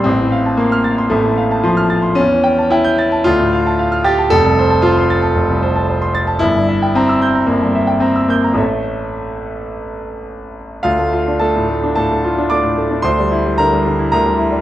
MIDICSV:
0, 0, Header, 1, 2, 480
1, 0, Start_track
1, 0, Key_signature, -1, "minor"
1, 0, Tempo, 530973
1, 52, Time_signature, 4, 2, 24, 8
1, 6772, Tempo, 560224
1, 10132, Tempo, 540541
1, 12974, End_track
2, 0, Start_track
2, 0, Title_t, "Grand piano"
2, 0, Program_c, 0, 0
2, 0, Control_c, 0, 64, 127
2, 35, Note_on_c, 0, 60, 92
2, 50, Note_on_c, 0, 33, 70
2, 69, Control_c, 0, 64, 0
2, 182, Note_on_c, 0, 45, 56
2, 208, Control_c, 0, 64, 127
2, 289, Note_on_c, 0, 77, 65
2, 373, Note_off_c, 0, 45, 0
2, 413, Note_on_c, 0, 81, 57
2, 487, Note_off_c, 0, 77, 0
2, 518, Note_on_c, 0, 58, 82
2, 530, Note_off_c, 0, 60, 0
2, 534, Note_on_c, 0, 84, 57
2, 609, Note_off_c, 0, 81, 0
2, 651, Note_on_c, 0, 89, 68
2, 729, Note_off_c, 0, 84, 0
2, 762, Note_on_c, 0, 93, 61
2, 848, Note_off_c, 0, 89, 0
2, 887, Note_on_c, 0, 84, 64
2, 963, Note_off_c, 0, 93, 0
2, 990, Note_off_c, 0, 33, 0
2, 993, Note_on_c, 0, 57, 91
2, 1004, Note_on_c, 0, 33, 66
2, 1010, Note_off_c, 0, 58, 0
2, 1086, Note_off_c, 0, 84, 0
2, 1120, Note_on_c, 0, 45, 54
2, 1244, Note_on_c, 0, 77, 64
2, 1323, Note_off_c, 0, 45, 0
2, 1366, Note_on_c, 0, 81, 61
2, 1443, Note_off_c, 0, 77, 0
2, 1478, Note_on_c, 0, 53, 83
2, 1485, Note_off_c, 0, 57, 0
2, 1486, Note_on_c, 0, 84, 58
2, 1562, Note_off_c, 0, 81, 0
2, 1600, Note_on_c, 0, 89, 66
2, 1681, Note_off_c, 0, 84, 0
2, 1717, Note_on_c, 0, 93, 62
2, 1797, Note_off_c, 0, 89, 0
2, 1828, Note_on_c, 0, 84, 56
2, 1915, Note_off_c, 0, 93, 0
2, 1935, Note_off_c, 0, 33, 0
2, 1945, Note_on_c, 0, 61, 103
2, 1959, Note_off_c, 0, 84, 0
2, 1959, Note_on_c, 0, 40, 75
2, 1961, Note_off_c, 0, 53, 0
2, 1989, Control_c, 0, 64, 0
2, 2092, Note_on_c, 0, 52, 59
2, 2124, Control_c, 0, 64, 127
2, 2202, Note_on_c, 0, 79, 73
2, 2286, Note_off_c, 0, 52, 0
2, 2335, Note_on_c, 0, 81, 55
2, 2403, Note_off_c, 0, 79, 0
2, 2445, Note_off_c, 0, 61, 0
2, 2445, Note_on_c, 0, 64, 98
2, 2453, Note_on_c, 0, 79, 68
2, 2531, Note_off_c, 0, 81, 0
2, 2571, Note_on_c, 0, 91, 74
2, 2652, Note_off_c, 0, 79, 0
2, 2699, Note_on_c, 0, 93, 69
2, 2772, Note_off_c, 0, 91, 0
2, 2819, Note_on_c, 0, 81, 66
2, 2897, Note_off_c, 0, 93, 0
2, 2912, Note_off_c, 0, 40, 0
2, 2931, Note_on_c, 0, 65, 110
2, 2941, Note_off_c, 0, 64, 0
2, 2944, Note_off_c, 0, 81, 0
2, 2947, Note_on_c, 0, 38, 80
2, 2963, Control_c, 0, 64, 0
2, 3069, Note_on_c, 0, 45, 65
2, 3128, Control_c, 0, 64, 127
2, 3189, Note_on_c, 0, 77, 66
2, 3261, Note_off_c, 0, 45, 0
2, 3314, Note_on_c, 0, 81, 65
2, 3381, Note_off_c, 0, 77, 0
2, 3427, Note_on_c, 0, 77, 63
2, 3503, Note_off_c, 0, 81, 0
2, 3543, Note_on_c, 0, 89, 66
2, 3619, Note_off_c, 0, 77, 0
2, 3656, Note_on_c, 0, 67, 103
2, 3660, Note_off_c, 0, 65, 0
2, 3662, Note_on_c, 0, 93, 73
2, 3737, Note_off_c, 0, 89, 0
2, 3782, Note_on_c, 0, 81, 69
2, 3856, Note_off_c, 0, 93, 0
2, 3878, Note_off_c, 0, 38, 0
2, 3890, Note_on_c, 0, 69, 118
2, 3901, Note_off_c, 0, 67, 0
2, 3902, Note_on_c, 0, 29, 84
2, 3904, Note_off_c, 0, 81, 0
2, 3923, Control_c, 0, 64, 0
2, 4016, Note_on_c, 0, 36, 67
2, 4067, Control_c, 0, 64, 127
2, 4148, Note_on_c, 0, 72, 76
2, 4211, Note_off_c, 0, 36, 0
2, 4251, Note_on_c, 0, 81, 58
2, 4336, Note_off_c, 0, 72, 0
2, 4359, Note_on_c, 0, 65, 100
2, 4367, Note_on_c, 0, 72, 69
2, 4373, Note_off_c, 0, 69, 0
2, 4446, Note_off_c, 0, 81, 0
2, 4496, Note_on_c, 0, 84, 69
2, 4564, Note_off_c, 0, 72, 0
2, 4612, Note_on_c, 0, 93, 67
2, 4687, Note_off_c, 0, 84, 0
2, 4721, Note_on_c, 0, 81, 66
2, 4805, Note_off_c, 0, 93, 0
2, 4825, Note_off_c, 0, 29, 0
2, 4839, Note_on_c, 0, 29, 73
2, 4920, Note_off_c, 0, 81, 0
2, 4968, Note_on_c, 0, 36, 63
2, 5085, Note_on_c, 0, 72, 64
2, 5162, Note_off_c, 0, 36, 0
2, 5201, Note_on_c, 0, 81, 58
2, 5280, Note_off_c, 0, 72, 0
2, 5323, Note_on_c, 0, 72, 61
2, 5397, Note_off_c, 0, 81, 0
2, 5438, Note_on_c, 0, 84, 64
2, 5518, Note_off_c, 0, 72, 0
2, 5557, Note_on_c, 0, 93, 73
2, 5636, Note_off_c, 0, 84, 0
2, 5670, Note_on_c, 0, 81, 65
2, 5756, Note_off_c, 0, 93, 0
2, 5774, Note_off_c, 0, 29, 0
2, 5778, Note_on_c, 0, 64, 104
2, 5794, Note_on_c, 0, 31, 74
2, 5799, Note_off_c, 0, 65, 0
2, 5801, Note_off_c, 0, 81, 0
2, 5824, Control_c, 0, 64, 0
2, 5927, Note_on_c, 0, 43, 60
2, 5954, Control_c, 0, 64, 127
2, 6042, Note_on_c, 0, 76, 70
2, 6122, Note_off_c, 0, 43, 0
2, 6168, Note_on_c, 0, 79, 59
2, 6240, Note_off_c, 0, 76, 0
2, 6277, Note_off_c, 0, 64, 0
2, 6286, Note_on_c, 0, 60, 95
2, 6293, Note_on_c, 0, 82, 63
2, 6363, Note_off_c, 0, 79, 0
2, 6411, Note_on_c, 0, 88, 70
2, 6485, Note_off_c, 0, 82, 0
2, 6526, Note_on_c, 0, 91, 60
2, 6604, Note_off_c, 0, 88, 0
2, 6644, Note_on_c, 0, 82, 55
2, 6722, Note_off_c, 0, 91, 0
2, 6736, Note_off_c, 0, 31, 0
2, 6751, Note_on_c, 0, 58, 73
2, 6765, Note_on_c, 0, 31, 61
2, 6770, Note_off_c, 0, 60, 0
2, 6838, Note_off_c, 0, 82, 0
2, 6878, Note_on_c, 0, 43, 52
2, 6993, Note_on_c, 0, 76, 59
2, 7069, Note_off_c, 0, 43, 0
2, 7098, Note_on_c, 0, 79, 57
2, 7187, Note_off_c, 0, 76, 0
2, 7209, Note_on_c, 0, 60, 77
2, 7224, Note_on_c, 0, 82, 56
2, 7229, Note_off_c, 0, 58, 0
2, 7299, Note_off_c, 0, 79, 0
2, 7343, Note_on_c, 0, 88, 59
2, 7422, Note_off_c, 0, 82, 0
2, 7451, Note_on_c, 0, 58, 71
2, 7463, Note_off_c, 0, 60, 0
2, 7466, Note_on_c, 0, 91, 67
2, 7542, Note_off_c, 0, 88, 0
2, 7586, Note_on_c, 0, 82, 56
2, 7665, Note_off_c, 0, 91, 0
2, 7665, Note_on_c, 0, 33, 66
2, 7675, Note_on_c, 0, 69, 49
2, 7687, Note_off_c, 0, 31, 0
2, 7689, Note_on_c, 0, 73, 48
2, 7698, Note_on_c, 0, 57, 71
2, 7700, Note_on_c, 0, 76, 50
2, 7706, Note_off_c, 0, 58, 0
2, 7714, Note_off_c, 0, 82, 0
2, 7734, Control_c, 0, 64, 0
2, 7879, Control_c, 0, 64, 127
2, 9404, Note_off_c, 0, 57, 0
2, 9595, Note_off_c, 0, 33, 0
2, 9599, Note_off_c, 0, 69, 0
2, 9606, Note_off_c, 0, 73, 0
2, 9612, Note_off_c, 0, 76, 0
2, 9632, Note_on_c, 0, 77, 86
2, 9639, Note_on_c, 0, 65, 65
2, 9643, Note_on_c, 0, 38, 71
2, 9672, Control_c, 0, 64, 0
2, 9767, Note_on_c, 0, 57, 58
2, 9809, Control_c, 0, 64, 127
2, 9879, Note_off_c, 0, 65, 0
2, 9892, Note_on_c, 0, 65, 65
2, 9964, Note_off_c, 0, 57, 0
2, 10015, Note_on_c, 0, 62, 51
2, 10085, Note_off_c, 0, 65, 0
2, 10116, Note_on_c, 0, 81, 79
2, 10123, Note_off_c, 0, 77, 0
2, 10129, Note_on_c, 0, 57, 56
2, 10129, Note_on_c, 0, 69, 67
2, 10208, Note_off_c, 0, 62, 0
2, 10262, Note_on_c, 0, 45, 57
2, 10328, Note_off_c, 0, 57, 0
2, 10379, Note_on_c, 0, 57, 51
2, 10454, Note_off_c, 0, 45, 0
2, 10507, Note_on_c, 0, 62, 61
2, 10573, Note_off_c, 0, 57, 0
2, 10584, Note_off_c, 0, 69, 0
2, 10585, Note_off_c, 0, 38, 0
2, 10600, Note_off_c, 0, 81, 0
2, 10614, Note_on_c, 0, 81, 82
2, 10624, Note_on_c, 0, 69, 69
2, 10628, Note_on_c, 0, 45, 55
2, 10697, Note_off_c, 0, 62, 0
2, 10759, Note_on_c, 0, 57, 55
2, 10817, Note_off_c, 0, 45, 0
2, 10871, Note_on_c, 0, 65, 64
2, 10942, Note_off_c, 0, 57, 0
2, 10991, Note_on_c, 0, 62, 62
2, 11059, Note_off_c, 0, 65, 0
2, 11071, Note_off_c, 0, 69, 0
2, 11095, Note_on_c, 0, 86, 86
2, 11099, Note_off_c, 0, 81, 0
2, 11102, Note_on_c, 0, 74, 69
2, 11107, Note_on_c, 0, 57, 48
2, 11180, Note_off_c, 0, 62, 0
2, 11219, Note_on_c, 0, 45, 52
2, 11299, Note_off_c, 0, 57, 0
2, 11344, Note_on_c, 0, 57, 55
2, 11416, Note_off_c, 0, 45, 0
2, 11459, Note_on_c, 0, 62, 53
2, 11538, Note_off_c, 0, 57, 0
2, 11552, Note_off_c, 0, 74, 0
2, 11562, Note_on_c, 0, 84, 98
2, 11575, Note_on_c, 0, 72, 75
2, 11578, Note_on_c, 0, 38, 72
2, 11583, Note_off_c, 0, 62, 0
2, 11583, Note_off_c, 0, 86, 0
2, 11605, Control_c, 0, 64, 0
2, 11710, Note_on_c, 0, 55, 54
2, 11751, Control_c, 0, 64, 127
2, 11821, Note_on_c, 0, 64, 65
2, 11900, Note_off_c, 0, 55, 0
2, 11948, Note_on_c, 0, 55, 52
2, 12016, Note_off_c, 0, 64, 0
2, 12026, Note_off_c, 0, 72, 0
2, 12054, Note_off_c, 0, 84, 0
2, 12054, Note_on_c, 0, 82, 91
2, 12064, Note_on_c, 0, 70, 64
2, 12068, Note_on_c, 0, 50, 56
2, 12139, Note_off_c, 0, 55, 0
2, 12188, Note_on_c, 0, 55, 56
2, 12259, Note_off_c, 0, 50, 0
2, 12312, Note_on_c, 0, 50, 56
2, 12377, Note_off_c, 0, 55, 0
2, 12420, Note_on_c, 0, 64, 61
2, 12498, Note_off_c, 0, 50, 0
2, 12508, Note_off_c, 0, 70, 0
2, 12510, Note_off_c, 0, 38, 0
2, 12521, Note_off_c, 0, 82, 0
2, 12534, Note_on_c, 0, 82, 94
2, 12544, Note_on_c, 0, 38, 68
2, 12547, Note_on_c, 0, 70, 64
2, 12612, Note_off_c, 0, 64, 0
2, 12661, Note_on_c, 0, 55, 54
2, 12773, Note_on_c, 0, 64, 60
2, 12850, Note_off_c, 0, 55, 0
2, 12891, Note_on_c, 0, 55, 63
2, 12965, Note_off_c, 0, 64, 0
2, 12974, Note_off_c, 0, 38, 0
2, 12974, Note_off_c, 0, 55, 0
2, 12974, Note_off_c, 0, 70, 0
2, 12974, Note_off_c, 0, 82, 0
2, 12974, End_track
0, 0, End_of_file